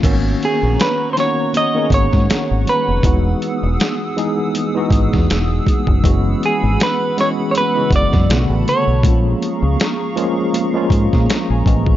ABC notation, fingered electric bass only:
X:1
M:4/4
L:1/16
Q:"Swing 16ths" 1/4=80
K:G#m
V:1 name="Fingered electric bass" clef=bass
G,,,2 z A,,, z6 G,,, G,, z G,,, z ^E,,, | E,,,2 z E,,, z6 G,,, E,, E,,,2 z F,,, | F,,,2 z G,,, z6 F,,, F,, B,,, =A,,, z B,,, | A,,,2 z C,, z6 G,, A,, z A,,, =A,,,2 |]